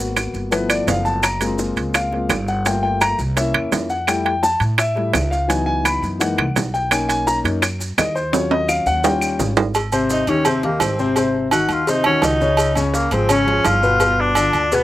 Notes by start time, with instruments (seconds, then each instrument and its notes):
Already playing: upright bass G#1, grand piano A#3 B3 F#4
0.00 maracas
0.16 high bongo, high timbale, low timbale, claves, maracas
0.34 upright bass G1, high bongo, maracas
0.51 grand piano F3 A3 B3 E4 B4, high bongo, high timbale, maracas
0.69 grand piano D5, high bongo, high timbale, claves, maracas
0.87 upright bass F#1, grand piano F5, high bongo, low bongo, high timbale, low timbale, maracas
1.05 grand piano A5, high bongo, maracas
1.23 grand piano A#5, high bongo, high timbale, claves, maracas
1.40 grand piano G#3 A#3 C4 F4, high timbale, maracas
1.58 high bongo, low timbale, maracas
1.76 upright bass C#2, high bongo, high timbale, maracas
1.94 grand piano F5, high bongo, high timbale, claves, maracas
2.12 grand piano G#3 A#3 C4 F4, high bongo
2.29 upright bass G1, high bongo, low bongo, high timbale, low timbale, claves, maracas
2.48 grand piano F#5, high bongo, maracas
2.65 grand piano A3 A#3 F4 G5, high bongo, high timbale, maracas
2.83 grand piano G5
3.01 grand piano A#5, high bongo, high timbale, low timbale, claves, maracas
3.19 upright bass C2, high bongo, maracas
3.36 grand piano A#3 C#4 E4 E5, high bongo, high timbale, maracas
3.54 upright bass E2, high bongo, high timbale, claves
3.72 upright bass F2, high bongo, low bongo, high timbale, low timbale, maracas
3.90 grand piano F#5, high bongo, maracas
4.07 grand piano G3 A3 E4 G5, high bongo, high timbale, claves, maracas
4.25 grand piano G5, high timbale
4.43 grand piano A5, high bongo, low timbale, maracas
4.60 upright bass A2, high bongo, high timbale, maracas
4.78 grand piano E5, high bongo, high timbale, claves, maracas
4.95 grand piano G3 A3 E4, high bongo
5.14 upright bass C#2, high bongo, low bongo, high timbale, low timbale, claves, maracas
5.31 grand piano F5, high bongo, maracas
5.48 grand piano E3 F#3 B3 D#4 G#5, high bongo, high timbale, maracas
5.66 grand piano G#5
5.85 grand piano B5, high bongo, high timbale, low timbale, claves, maracas
6.02 upright bass F#2, high bongo, maracas
6.19 grand piano E3 G#3 A#3 D#4 F#5, high bongo, high timbale, maracas
6.37 upright bass C2, high bongo, high timbale, claves
6.56 upright bass B1, high bongo, low bongo, high timbale, low timbale, maracas
6.74 grand piano G5, high bongo, maracas
6.91 grand piano A#3 C#4 D#4 G#5, high bongo, high timbale, claves, maracas
7.09 grand piano G#5, high timbale, maracas
7.27 grand piano A#5, high bongo, low timbale, maracas
7.44 upright bass F#2, grand piano A#3 C#4 D#4, high bongo, high timbale, maracas
7.62 high bongo, high timbale, claves, maracas
7.80 high bongo, maracas
7.98 upright bass D#2, grand piano D#5, high bongo, low bongo, high timbale, low timbale, claves, maracas
8.15 grand piano C5, high bongo, maracas
8.32 grand piano F#3 C#4 F4 C#5, high bongo, high timbale, maracas
8.51 grand piano D#5, high timbale
8.68 grand piano F5, high bongo, claves, maracas
8.86 upright bass D#2, grand piano F#5, high bongo, maracas
9.04 grand piano G3 C#4 F4 G5, high bongo, low timbale, maracas
9.21 high bongo, claves, maracas
9.39 upright bass G#1, high bongo, low bongo, low timbale, maracas
9.57 high bongo, low timbale, maracas
9.75 cowbell, low agogo, maracas
9.92 grand piano C3 C4 C5, low agogo, maracas
10.10 tenor saxophone D#4, cowbell, low timbale, maracas
10.27 upright bass D#2, grand piano D#3 D#4 G4, tenor saxophone C#4, cowbell, low agogo, maracas
10.45 grand piano C3 C4 C5, tenor saxophone C4, cowbell, low agogo, maracas
10.63 grand piano D#3 D#4 G4, tenor saxophone A#3, cowbell
10.80 upright bass G#1, tenor saxophone C4, cowbell, low timbale, low agogo, maracas
10.99 grand piano C3 C4 C5, maracas
11.16 grand piano C3 C4 C5, cowbell, low agogo, maracas
11.51 grand piano D#3 D#4 F#4, tenor saxophone F#4, cowbell, low timbale, low agogo, maracas
11.69 upright bass D#2, tenor saxophone F4, low agogo, maracas
11.87 grand piano C3 C4 C5, tenor saxophone D#4, cowbell, maracas
12.04 grand piano D#3 D#4 F#4, tenor saxophone C#4, low agogo
12.22 upright bass C#2, tenor saxophone D#4, cowbell, low timbale, low agogo, maracas
12.41 grand piano C#3 C#4 C#5, maracas
12.57 cowbell, low agogo, maracas
12.75 grand piano C#3 C#4 C#5, low agogo, maracas
12.94 tenor saxophone A#3, cowbell, low timbale, maracas
13.11 upright bass G#1, grand piano F3 F4 G#4, tenor saxophone C4, cowbell, low agogo, maracas
13.29 grand piano C#3 C#4 C#5, tenor saxophone C#4, cowbell, low agogo, maracas
13.46 grand piano F3 F4 G#4, cowbell
13.65 upright bass G1, tenor saxophone F4, cowbell, low timbale, low agogo, maracas
13.83 grand piano B2 B3 B4, maracas
14.00 grand piano B2 B3 B4, cowbell, low agogo, maracas
14.20 tenor saxophone D4
14.35 grand piano D3 D4 F4, cowbell, low timbale, low agogo, maracas
14.53 upright bass D2, low agogo, maracas
14.72 grand piano B2 B3 B4, tenor saxophone B3, cowbell, maracas